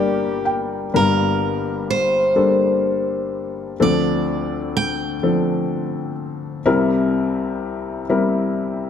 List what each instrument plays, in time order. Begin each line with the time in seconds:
Already playing: felt piano G1 G2 G3 A#3 D4 F4 A#4 D5, cello G4, steel-string acoustic guitar A#4, harp A#4
0.45 felt piano G5
0.94 felt piano G1 G2 G3 A#3 D4 A#4, steel-string acoustic guitar A#4
1.90 steel-string acoustic guitar C5
2.36 felt piano G3 A#3 D4 A4
3.80 felt piano D2 D3 F3 C4 D4 A4, steel-string acoustic guitar D5
4.77 steel-string acoustic guitar G5
5.23 felt piano F3 C4 D4 A4
6.66 felt piano C2 C3 G3 C4 E4 A#4
8.09 felt piano G3 C4 E4 A#4